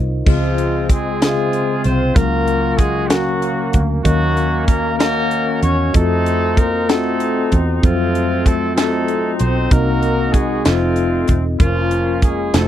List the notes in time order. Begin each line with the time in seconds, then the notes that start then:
Already playing: C2 D#4 F4 A#4 C5 D#5 F5
0.26 C#2 C#3 F3 G#3 C4 F4 G#4 C5 D#5, kick, crash
0.58 closed hi-hat
0.89 G#3 G#4, kick, closed hi-hat
1.21 C#3 G#3 C4 F4 G#4 C5 E5, snare, closed hi-hat
1.29 F5
1.53 closed hi-hat
1.84 C2 C4 C5, closed hi-hat
2.14 C#2 C#3 F#3 A#3 C#4 F4 F#4 A#4 F5, kick, closed hi-hat
2.48 closed hi-hat
2.78 G#3 G#4, kick, closed hi-hat
3.08 F#3 A#3 C#4 F#4 A#4 F5 G#5, snare, closed hi-hat
3.42 closed hi-hat
3.73 D2, kick, closed hi-hat
4.03 D#2 D#3 F#3 A#3 C#4 F#4 A#4 D#5 F5, kick, closed hi-hat
4.37 closed hi-hat
4.67 A#3 A#4, kick, closed hi-hat
4.99 A#3 C#4 F#4 A#4 D#5 F5, snare, closed hi-hat
5.31 closed hi-hat
5.63 E2 C#4 C#5, closed hi-hat
5.93 F2 A3 C4 F4 F#4 A4 D#5, kick, closed hi-hat
5.98 C4 D#4
6.26 closed hi-hat
6.57 A#3 A#4, kick, closed hi-hat
6.88 A3 C4 F4 F#4 A4 F#5, snare, closed hi-hat
6.92 D#4
7.20 closed hi-hat
7.52 E2, kick, closed hi-hat
7.83 F2 F3 F#3 C4 F4 A4 C5, kick, closed hi-hat
7.87 A3 C4
8.15 closed hi-hat
8.46 A3 A4, kick, closed hi-hat
8.76 A3 C4 D#4 F4 F#4 A4 D#5, snare, clap, closed hi-hat
9.08 closed hi-hat
9.39 B1 C4 C5, closed hi-hat
9.71 C2 C3 A#3 C4 D#4 F#4 A#4 D#5, kick, closed hi-hat
10.03 closed hi-hat
10.33 G#3 G#4, kick, closed hi-hat
10.65 F1 F3 A3 C4 D#4 F4 A4 D#5, snare, clap, closed hi-hat
10.96 closed hi-hat
11.28 E1, kick, closed hi-hat
11.60 F1 F3 A#3 C#4 F4 A#4, kick, closed hi-hat
11.91 closed hi-hat
12.22 G#3 G#4, kick, closed hi-hat
12.54 F1 A3 D#4 F4 F#4 C5, snare, clap, closed hi-hat
12.58 A3 C4 D#4 A4